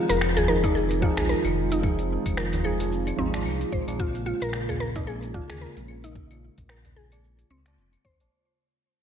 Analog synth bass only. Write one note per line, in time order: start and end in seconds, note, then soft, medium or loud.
0.10 1.10 F1 medium
1.18 1.35 A#1 medium
1.45 2.18 F1 loud
2.26 3.13 F1 medium
3.19 3.45 G#1 medium
3.45 3.65 C2 loud
3.73 3.83 A#1 medium
3.88 4.34 A#1 medium
4.42 5.42 A#1 loud
5.50 5.67 D#2 medium
5.77 6.50 A#1 medium
6.58 7.45 A#1 medium
7.51 7.77 C#2 medium
7.78 7.97 F1 medium
8.05 8.22 D#2 medium
8.21 8.28 A#1 medium